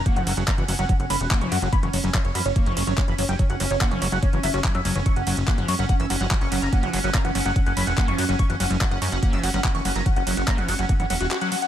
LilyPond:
<<
  \new Staff \with { instrumentName = "Analog synth lead" } { \time 4/4 \tempo 4 = 144 fis''16 fis''16 fis''16 fis''16 ais''16 fis''16 fis''16 fis''16 fis''16 fis''16 b''16 fis''16 fis''16 cis'''16 fis''16 fis''16 | b''16 cis''16 cis''16 r16 cis''16 cis''16 b''16 cis''16 cis''16 cis'''16 cis''16 cis''16 cis''16 b''16 cis''16 g''16 | cis''16 fis''16 cis''16 cis''16 fis''16 cis''16 cis''16 fis''16 cis''16 cis''16 e''16 cis''16 cis''16 e''16 cis''16 cis''16 | cis'''16 fis''16 fis''16 r16 fis''16 fis''16 cis'''16 fis''16 fis''16 e'''16 fis''16 fis''16 fis''16 cis'''16 fis''16 ais''16 |
fis''16 fis''16 fis''16 fis''16 ais''16 fis''16 fis''16 fis''16 fis''16 fis''16 b''16 fis''16 fis''16 cis'''16 fis''16 fis''16 | cis'''16 fis''16 fis''16 r16 fis''16 fis''16 cis'''16 fis''16 fis''16 e'''16 fis''16 fis''16 fis''16 cis'''16 fis''16 ais''16 | fis''16 fis''16 fis''16 fis''16 ais''16 fis''16 fis''16 fis''16 fis''16 fis''16 fis''16 fis''16 fis''16 fis''16 fis''16 fis''16 | }
  \new Staff \with { instrumentName = "Synth texture" } { \time 4/4 cis'1~ | cis'1~ | cis'1~ | cis'1~ |
cis'1~ | cis'1~ | cis'1 | }
  \new Staff \with { instrumentName = "Acid bass" } { \clef bass \time 4/4 ais16 e16 g16 fis16 ais16 e16 fis16 fis16 fis16 r16 fis16 r16 ais16 e16 g16 fis16 | ais16 e16 fis16 fis16 fis16 r16 fis16 r16 ais16 e16 g16 fis16 ais16 e16 fis16 fis16 | fis16 r16 fis16 r16 ais16 e16 g16 fis16 ais16 e16 fis16 fis'16 fis16 fis16 fis16 e16 | fis16 r16 fis16 r16 ais16 e16 g16 fis16 ais16 e16 fis16 fis16 fis16 r16 fis16 r16 |
ais16 e16 g16 fis16 ais16 e16 fis16 fis16 fis16 r16 fis16 r16 ais16 e16 g16 fis16 | ais16 e16 fis16 fis16 fis16 r16 fis16 r16 ais16 e16 g16 fis16 ais16 e16 fis16 fis16 | fis16 r16 fis16 r16 ais16 e16 g16 fis16 ais16 e16 fis16 fis'16 fis'16 fis16 fis16 r16 | }
  \new Staff \with { instrumentName = "Analog synth bass" } { \clef bass \time 4/4 r16 fis,,16 fis,,16 fis,,16 r16 fis,,16 fis,,16 fis,,16 r16 fis,,16 fis,,16 e,,16 r16 fis,,16 fis,16 fis,,16 | r16 fis,,16 fis,,16 fis,,16 r16 fis,,16 fis,16 fis,,16 r16 fis,,16 fis,,16 g,,16 r16 fis,,16 fis,,16 fis,,16 | r16 fis,,16 fis,,16 fis,,16 r16 fis,,16 fis,,16 fis,,16 r16 fis,,16 fis,,16 fis,,16 r16 fis,16 fis,,16 fis,,16 | r16 fis,,16 fis,,16 fis,,16 r16 fis,,16 fis,16 fis,,16 r16 fis,,16 fis,,16 g,,16 r16 fis,,16 fis,,16 fis,,16 |
r16 fis,,16 fis,,16 fis,,16 r16 fis,,16 fis,,16 fis,,16 r16 fis,,16 fis,,16 e,,16 r16 fis,,16 fis,16 fis,,16 | r16 fis,,16 fis,,16 fis,,16 r16 fis,,16 fis,16 fis,,16 r16 fis,,16 fis,,16 g,,16 r16 fis,,16 fis,,16 fis,,16 | r16 fis,,16 fis,,16 fis,,16 r16 fis,,16 fis,,16 fis,,16 r16 g,,16 e,,16 e,,16 r4 | }
  \new DrumStaff \with { instrumentName = "Drums" } \drummode { \time 4/4 <hh bd cymr>16 hh16 <hho cymr>16 hh16 <hc hh bd>16 hh16 <hho cymr>16 hh16 <hh bd cymr>16 hh16 <hho cymr>16 hh16 <hc hh bd>16 hh16 <hho cymr>16 hh16 | <hh bd cymr>16 hh16 <hho cymr>16 hh16 <hc hh bd>16 hh16 <hho cymr>16 hh16 <hh bd cymr>16 hh16 <hho cymr>16 hh16 <hc hh bd>16 hh16 <hho cymr>16 hh16 | <hh bd cymr>16 hh16 <hho cymr>16 hh16 <hc hh bd>16 hh16 <hho cymr>16 hh16 <hh bd cymr>16 hh16 <hho cymr>16 hh16 <hc hh bd>16 hh16 <hho cymr>16 hh16 | <hh bd cymr>16 hh16 <hho cymr>16 hh16 <hc hh bd cymr>16 hh16 <hho cymr>16 hh16 <hh bd cymr>16 hh16 <hho cymr>8 <hc hh bd>16 hh16 <hho cymr>16 hh16 |
<hh bd cymr>16 hh16 <hho cymr>16 hh16 <hc hh bd>16 hh16 <hho cymr>8 <hh bd cymr>16 hh16 <hho cymr>16 hh16 <hc hh bd cymr>16 hh16 <hho cymr>16 hh16 | <hh bd cymr>16 hh16 <hho cymr>16 hh16 <hc hh bd>16 hh16 <hho cymr>16 hh16 <hh bd cymr>16 hh16 <hho cymr>16 hh16 <hc hh bd cymr>16 hh16 <hho cymr>16 hh16 | <hh bd cymr>16 hh16 <hho cymr>16 hh16 <hc hh bd>16 hh16 <hho cymr>16 hh16 <hh bd cymr>16 hh16 <hho cymr>16 hh16 <hc hh cymr>16 hh16 <hho cymr>16 hh16 | }
>>